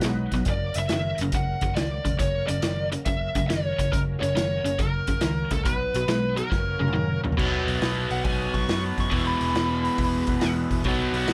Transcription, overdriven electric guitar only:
0.04 0.30 B2 medium
0.04 0.30 G#3 medium
0.34 0.46 B2 medium
0.34 0.46 F#3 medium
0.49 0.74 F#2 medium
0.49 0.74 C#3 medium
0.78 0.90 F#2 medium
0.78 0.90 C#3 medium
0.92 1.18 F#2 medium
0.92 1.18 D#3 medium
1.22 1.33 F#2 medium
1.22 1.34 C#3 medium
1.35 1.60 F#2 medium
1.35 1.60 C#3 medium
1.63 1.75 F#2 medium
1.63 1.75 C#3 medium
1.77 2.03 F#2 medium
1.77 2.03 D#3 medium
2.05 2.18 F#2 medium
2.05 2.18 C#3 medium
2.19 2.46 F#2 medium
2.19 2.46 C#3 medium
2.48 2.61 F#2 medium
2.48 2.62 C#3 medium
2.63 2.89 F#2 medium
2.63 2.90 D#3 medium
2.92 3.05 F#2 medium
2.92 3.05 C#3 medium
3.08 3.33 F#2 medium
3.08 3.33 C#3 medium
3.36 3.48 F#2 medium
3.36 3.49 C#3 medium
3.49 3.76 F#2 medium
3.49 3.76 D#3 medium
3.79 3.91 F#2 medium
3.79 3.91 C#3 medium
3.92 4.19 F#2 medium
3.92 4.19 C#3 medium
4.21 4.34 F#2 medium
4.21 4.35 C#3 medium
4.35 4.62 F#2 medium
4.35 4.62 D#3 medium
4.65 4.78 F#2 medium
4.65 4.78 C#3 medium
4.79 5.06 F#2 medium
4.79 5.06 C#3 medium
5.09 5.21 F#2 medium
5.09 5.21 C#3 medium
5.22 5.48 F#2 medium
5.22 5.49 D#3 medium
5.52 5.64 F#2 medium
5.52 5.65 C#3 medium
5.66 5.92 B2 medium
5.66 5.92 F#3 medium
5.96 6.07 B2 medium
5.96 6.08 F#3 medium
6.08 6.35 B2 medium
6.08 6.35 G#3 medium
6.37 6.51 B2 medium
6.37 6.51 F#3 medium
6.51 6.78 F#2 medium
6.51 6.78 C#3 medium
6.80 6.92 F#2 medium
6.80 6.93 C#3 medium
6.93 7.21 F#2 medium
6.93 7.21 D#3 medium
7.24 7.37 F#2 medium
7.24 7.37 C#3 medium
7.37 9.10 B2 medium
7.37 9.11 F#3 medium
7.37 10.88 B3 medium
9.10 10.83 E2 medium
9.10 10.84 B2 medium
9.10 10.85 E3 medium
10.85 11.33 B2 medium
10.85 11.33 F#3 medium
10.85 11.33 B3 loud

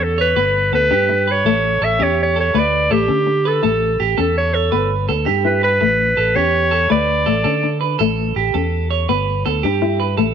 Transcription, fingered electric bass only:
0.00 0.33 E2 medium
0.36 0.70 G1 medium
0.72 0.89 D2 medium
0.91 1.42 G2 medium
1.45 1.79 A1 medium
1.81 1.99 A1 medium
2.00 2.51 E2 medium
2.55 2.88 D2 medium
2.91 3.08 A1 medium
3.09 3.60 D3 medium
3.64 3.98 A1 medium
4.00 4.17 A1 medium
4.19 4.69 E2 medium
4.73 5.07 G1 medium
5.09 5.26 D2 medium
5.28 5.78 G2 medium
5.82 6.16 A1 medium
6.18 6.35 A1 medium
6.37 6.87 E2 medium
6.91 7.25 D2 medium
7.27 7.44 A1 medium
7.45 7.96 D3 medium
8.00 8.34 A1 medium
8.36 8.53 A1 medium
8.54 9.05 E2 medium
9.09 9.43 G1 medium
9.46 9.63 D2 medium
9.64 10.15 G2 medium
10.18 10.34 A1 medium

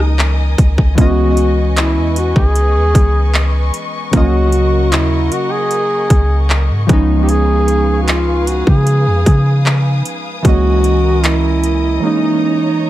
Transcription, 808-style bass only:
0.00 0.55 C#2 loud
0.59 0.77 C#2 loud
0.78 0.97 C#2 loud
0.98 1.98 C#2 loud
1.97 2.34 E2 loud
2.36 2.77 C#2 loud
2.76 2.94 D#2 loud
2.95 3.71 C#2 loud
4.13 4.94 C#2 loud
4.92 5.30 D#2 loud
6.10 6.71 C#2 loud
6.70 6.89 G#2 medium
6.89 8.63 C#2 loud
8.67 9.08 C#3 loud
9.07 9.26 F2 loud
9.27 10.02 C#3 loud
10.45 11.99 C#2 loud

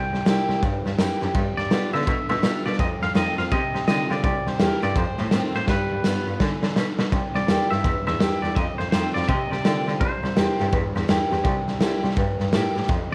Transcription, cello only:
0.13 0.18 C2 medium
0.26 0.34 C2 medium
0.49 0.54 C2 medium
0.63 0.71 G2 medium
0.85 0.90 G2 medium
0.99 1.07 F#2 medium
1.22 1.26 F#2 medium
1.35 1.43 G2 medium
1.57 1.62 G2 medium
1.71 1.79 B2 medium
1.93 2.01 D3 medium
2.07 2.15 B2 medium
2.30 2.38 B2 loud
2.43 2.51 B2 medium
2.66 2.70 B2 medium
2.79 2.87 F2 loud
3.02 3.06 F2 medium
3.15 3.23 F2 medium
3.38 3.43 F2 medium
3.52 3.60 C3 medium
3.74 3.79 C3 medium
3.88 3.96 D3 medium
4.10 4.15 D3 medium
4.24 4.32 C2 medium
4.47 4.51 C2 medium
4.60 4.68 E2 medium
4.83 4.91 G2 loud
4.96 5.04 F2 loud
5.19 5.27 A2 medium
5.32 5.40 A2 medium
5.55 5.59 A2 medium
5.68 5.76 G2 medium
5.91 5.95 G2 medium
6.05 6.13 G2 medium
6.27 6.31 G2 medium
6.40 6.48 D3 medium
6.63 6.67 D3 medium
6.76 6.84 B2 medium
6.99 7.04 B2 medium
7.12 7.20 C2 medium
7.35 7.40 C2 medium
7.49 7.57 E2 medium
7.71 7.79 G2 medium
7.85 7.93 E2 medium
8.07 8.15 E2 medium
8.20 8.28 E2 medium
8.43 8.47 E2 medium
8.56 8.64 F2 medium
8.79 8.84 F2 medium
8.93 9.01 F2 loud
9.16 9.20 F2 medium
9.29 9.37 C3 medium
9.51 9.56 C3 medium
9.65 9.73 D3 medium
9.88 9.92 D3 medium
10.01 10.09 C2 medium
10.24 10.28 C2 medium
10.37 10.45 E2 medium
10.60 10.68 G2 medium
10.73 10.81 E2 medium
10.96 11.04 E2 medium
11.10 11.18 E2 medium
11.32 11.36 E2 medium
11.45 11.53 C2 loud
11.69 11.73 C2 medium
11.82 11.90 C2 medium
12.05 12.09 C2 medium
12.17 12.25 G2 medium
12.41 12.45 G2 medium
12.54 12.62 A2 medium
12.76 12.80 A2 medium
12.89 12.97 F2 medium

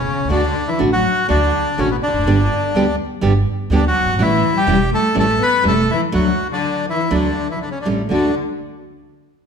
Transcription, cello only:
0.00 0.30 C#3 medium
0.32 0.66 D3 medium
0.68 0.79 E3 medium
0.92 1.27 F#3 medium
1.28 1.74 D3 medium
1.76 1.89 C#3 medium
1.90 1.96 B2 medium
2.03 2.96 D3 medium
3.71 3.83 D3 medium
3.85 4.18 F#3 medium
4.20 4.54 E3 loud
4.56 4.90 G3 loud
4.92 5.15 A3 medium
5.18 5.40 A3 loud
5.42 5.64 B3 loud
5.67 5.88 A3 loud
5.92 6.02 E3 medium
6.15 6.48 F#3 medium
6.52 6.85 D3 medium
6.89 7.11 E3 medium
7.15 7.48 D3 medium
7.50 7.57 E3 medium
7.58 7.67 D3 medium
7.68 7.76 C#3 soft
7.77 7.86 D3 medium
8.10 8.33 D3 medium

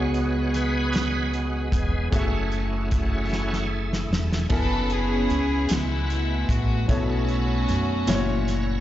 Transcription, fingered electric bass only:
0.00 1.69 C#2 medium
1.72 2.09 E1 medium
2.13 4.07 F#1 medium
4.11 4.47 E1 medium
4.50 5.26 F#1 medium
5.31 5.67 C#2 medium
5.71 6.45 C#2 medium
6.49 6.85 A1 medium
6.89 7.64 B1 medium
7.70 8.05 F#2 medium
8.08 8.80 F#1 medium

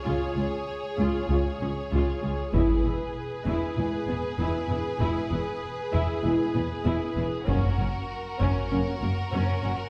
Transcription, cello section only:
0.06 0.14 C#2 medium
0.38 0.46 C#2 soft
0.98 1.06 C#2 soft
1.29 1.37 C#2 soft
1.61 1.69 C#2 soft
1.91 1.99 C#2 soft
2.22 2.30 C#2 soft
2.53 2.61 E2 medium
2.84 2.92 E2 soft
3.46 3.54 E2 medium
3.77 3.85 E2 soft
4.08 4.16 E2 soft
4.39 4.47 E2 soft
4.69 4.77 E2 soft
5.00 5.08 E2 medium
5.31 5.39 E2 soft
5.94 6.02 E2 medium
6.25 6.33 E2 soft
6.55 6.63 E2 soft
6.86 6.94 E2 medium
7.17 7.25 E2 soft
7.47 7.55 F#2 medium
7.78 7.86 F#2 soft
8.40 8.48 F#2 medium
8.71 8.79 F#2 soft
9.02 9.10 F#2 soft
9.33 9.41 F#2 medium
9.63 9.71 F#2 soft

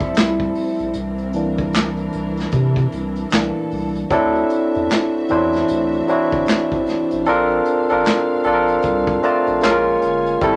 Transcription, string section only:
0.00 0.91 F3 medium
0.00 3.27 C4 medium
0.00 0.91 E4 medium
0.00 0.91 A4 medium
0.94 4.07 E3 medium
0.94 4.07 D4 medium
0.94 3.29 A#4 medium
3.31 4.10 A#2 medium
3.31 4.09 A4 medium
4.10 9.59 D4 medium
4.10 7.23 F#4 medium
4.10 9.59 C5 medium
4.10 7.23 E5 medium
7.27 9.61 F5 medium
9.63 10.41 F4 medium
9.63 10.41 C#5 medium
9.63 10.41 G#5 medium
10.41 10.56 G4 medium
10.41 10.56 C5 medium
10.41 10.56 E5 medium
10.41 10.56 A5 medium

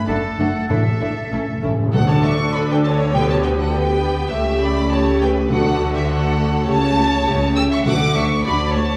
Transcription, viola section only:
0.07 0.16 A3 medium
0.07 0.15 D4 medium
0.39 0.47 A3 soft
0.39 0.47 D4 soft
0.69 0.78 A3 soft
0.69 0.77 D4 soft
1.00 1.09 A3 soft
1.00 1.08 D4 soft
1.31 1.39 A3 soft
1.31 1.39 C#4 soft
1.62 1.70 A3 soft
1.62 1.70 C#4 soft
1.94 3.10 D4 medium
1.94 3.10 A4 medium
3.15 3.73 B3 medium
3.15 3.73 G4 medium
3.74 4.31 B3 medium
3.74 4.31 G4 medium
4.32 4.90 A3 medium
4.32 4.90 G4 medium
4.91 5.49 A3 medium
4.91 5.49 G4 medium
5.50 6.07 A3 medium
5.50 6.07 F#4 medium
6.08 6.66 A3 medium
6.08 6.66 F#4 medium
6.67 6.75 A3 medium
6.67 6.75 G4 medium
6.96 7.04 A3 medium
6.96 7.05 G4 medium
7.26 7.34 A3 medium
7.26 7.34 G4 medium
7.56 7.64 A3 medium
7.56 7.64 G4 medium
7.86 7.94 A3 medium
7.86 7.94 F#4 medium
8.16 8.24 A3 medium
8.16 8.24 F#4 medium
8.46 8.54 A3 medium
8.46 8.54 F#4 medium
8.76 8.84 A3 medium
8.76 8.84 F#4 medium

